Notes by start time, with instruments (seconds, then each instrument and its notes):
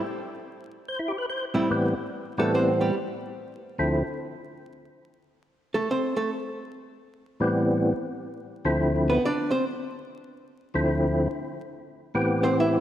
0.88 tonewheel organ C5
0.99 tonewheel organ E4
1.08 tonewheel organ G4
1.18 tonewheel organ B4
1.30 tonewheel organ C5
1.54 hollow-body jazz guitar A2 G3 C4 E4
1.70 tonewheel organ A2 E3 G3 B3 C4
2.38 tonewheel organ A2 E3 G3 B3 C4, hollow-body jazz guitar A3 A4
2.55 hollow-body jazz guitar C4 C5
2.81 hollow-body jazz guitar G3 G4
3.78 tonewheel organ D2 D3 F3 C4 E4
5.74 hollow-body jazz guitar A3 A4
5.91 hollow-body jazz guitar C4 C5
6.16 hollow-body jazz guitar A3 A4
7.40 tonewheel organ A2 E3 G3 B3 C4
8.65 tonewheel organ D2 D3 F3 C4 E4
9.09 hollow-body jazz guitar B3 B4
9.25 hollow-body jazz guitar D4 D5
9.51 hollow-body jazz guitar C4 C5
10.74 tonewheel organ D2 D3 F3 C4 E4
12.14 tonewheel organ A2 E3 B3 C4 G4
12.44 hollow-body jazz guitar C4 C5
12.60 hollow-body jazz guitar E4 E5